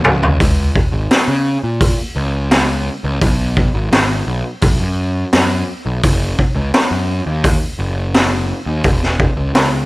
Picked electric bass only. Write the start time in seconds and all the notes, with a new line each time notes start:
0.04 C#2
0.40 C#2
0.92 G#1
1.28 C#3
1.63 A#2
2.16 C#2
3.04 C#2
3.21 B1
3.74 G#1
3.92 G#1
4.27 B1
4.62 B1
4.80 F#2
5.34 F#2
5.86 B1
6.03 F#1
6.55 C#2
6.91 F#2
7.26 D#2
7.79 F#1
8.66 D#2
8.85 E1
9.37 C#2
9.55 C#2